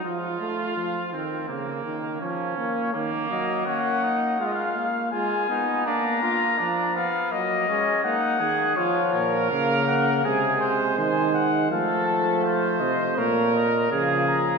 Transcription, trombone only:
X:1
M:4/4
L:1/8
Q:1/4=82
K:Bbphr
V:1 name="Trombone" clef=bass
F, =A, F, E, D, E, F, B, | E, G, B,2 A, B, A, C | B, B, F, z G, A, B, E, | F,2 B,2 A,4 |
=A,4 B, z F,2 |]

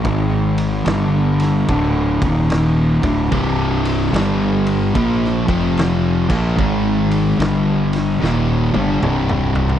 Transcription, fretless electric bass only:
X:1
M:4/4
L:1/8
Q:"Swing" 1/4=73
K:Cm
V:1 name="Fretless electric bass" clef=bass
A,,,2 G,,,2 D,,, E,,,2 D,,, | C,,,2 G,,,2 B,,, F,,,2 B,,, | A,,,2 G,,,2 E,,, G,,, C,,,2 |]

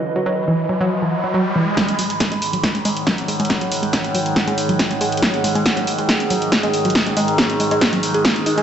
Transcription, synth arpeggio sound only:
X:1
M:4/4
L:1/16
Q:1/4=139
K:G#m
V:1 name="Synth arpeggio sound" clef=bass
z F, F, z E, z F, F, z E, z F, F, z E, z | G, z F, z G, G, z F, z G, G, z F, z G, G, | z F, z G, G, z F, z G, G, z F, z G, G, z | F, z G, G, z F, z G, G, z F, z G, G, z F, |
z G, G, z F, z G, G, z F, z G G, z D G, |]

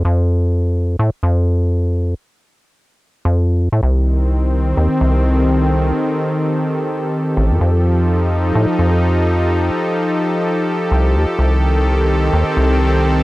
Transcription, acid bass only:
X:1
M:4/4
L:1/16
Q:"Swing 16ths" 1/4=127
K:Fdor
V:1 name="Acid bass" clef=bass
F,,8 =A,, z F,,6- | F,,2 z8 z F,,4 =A,, | C,,8 E,, z C,,6- | C,,2 z12 =A,,, F,, |
F,,8 =A,, z F,,6- | F,,2 z8 z2 C,,2 E,, z | C,,8 E,, z C,,6 |]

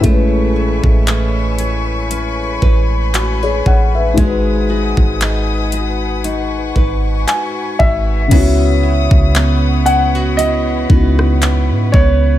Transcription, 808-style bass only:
X:1
M:4/4
L:1/16
Q:"Swing 16ths" 1/4=58
K:C#m
V:1 name="808-style bass" clef=bass
A,,,3 A,,,6- A,,, A,,,4 A,,,2 | G,,,3 G,,,6- G,,, G,,,2 z2 G,,,2 | C,,3 C,,6- C,, C,,3 G,, C,,2 |]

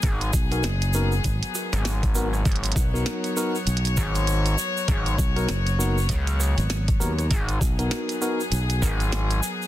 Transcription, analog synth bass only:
X:1
M:4/4
L:1/16
Q:"Swing 16ths" 1/4=99
K:G#m
V:1 name="Analog synth bass" clef=bass
G,,,2 z8 z G,,,4- G,,, | G,,,2 z8 G,,,4 z2 | G,,,2 z6 C,,3 z4 z | G,,,2 z8 G,,,4 z2 |]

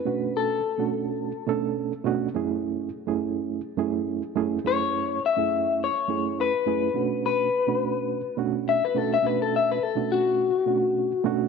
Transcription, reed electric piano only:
X:1
M:4/4
L:1/16
Q:"Swing 16ths" 1/4=104
K:Bdor
V:1 name="Reed electric piano"
[B,,A,CDF]4 z [B,,A,CDF]4 z [B,,A,CDA]3 z [B,,A,CDF] z | [F,,A,CEG]4 z [F,,A,CEG]4 z [F,,A,CEG]3 z [F,,A,CEG] z | [F,,A,CEG]4 z [F,,A,CEG]4 z [F,,A,CEG]3 z [F,,A,CEG] z | [B,,A,CDF]4 z [B,,A,CDF]4 z [B,,A,CDF]3 z [B,,A,CDF] z |
[B,,A,CDF]4 z [B,,A,CDF]4 z [B,,A,CDF]3 z [B,,A,CDF] z |]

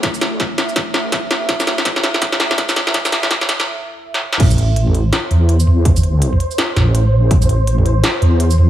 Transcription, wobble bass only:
X:1
M:4/4
L:1/8
Q:"Swing 16ths" 1/4=165
K:Am
V:1 name="Wobble bass" clef=bass
E,,3 z2 A,,,3 | A,,,4 z E,,3- | E,,3 A,,, z4 | A,,,4 z E,,3- |
E,,3 z2 A,,,3 | A,,,4 z E,,3 |]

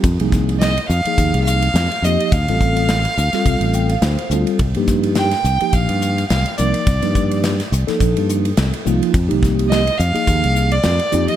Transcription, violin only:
X:1
M:4/4
L:1/16
Q:"Swing 16ths" 1/4=106
K:Cdor
V:1 name="Violin"
z4 e2 f4 f4 e2 | f12- f2 z2 | z4 g4 f4 f2 d2- | d4 z12 |
z4 e2 f4- f d4 e |]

